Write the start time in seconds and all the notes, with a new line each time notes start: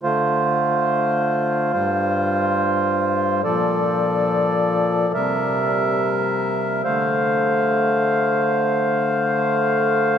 0.03 D3 A3 F4 C5
1.74 G2 G3 C5
3.44 A#2 F3 A4 D5
5.14 C3 G3 A#4 E5
6.84 D3 A3 C5 F5